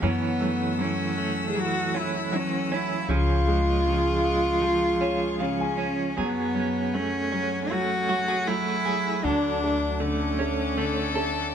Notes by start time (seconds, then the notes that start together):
0.01 F#2 E3 F#3 B3 C#4 A4 F#5 E6
0.40 F#3 A3
0.78 E3 F#3 C#4
1.18 A3
1.50 G#4
1.55 E3 F#3
1.60 F#4
1.95 C#4 E4
2.32 E3 F#3
2.36 C#4
2.72 C#4 E4
3.09 C#2 C#3 F3 C#4 F4 G#4 F5 C#6
3.47 G#3
3.85 C#3 F3
4.24 G#3
4.62 F3 G#3
5.01 C#4 C#5
5.40 C#3 F3 C#4 F5
5.60 G#5
5.78 C#4
6.17 F#2 F#3 B3 G#4 F#5 G#5
6.55 F#3 C#4
6.94 F#3 A3 C#4
7.32 F#3 C#4
7.71 F#3 A3 F#4
8.09 F#3 F#4
8.28 G#4
8.47 F#3 A3 E4
8.85 F#3 G#4
9.23 D2 D3 F#3 D4 A4 D6
9.63 A3
10.00 D3 A3 C#4
10.39 A3 C#4
10.77 D3 A3 A4
11.15 A3 A4